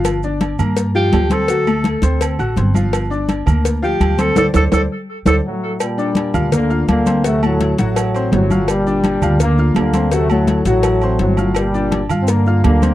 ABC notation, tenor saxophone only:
X:1
M:4/4
L:1/8
Q:1/4=167
K:Gm
V:1 name="Tenor saxophone"
z4 z G2 A- | A2 z6 | z4 z G2 A | A A A z2 A z2 |
z8 | z8 | z8 | z8 |
z8 |]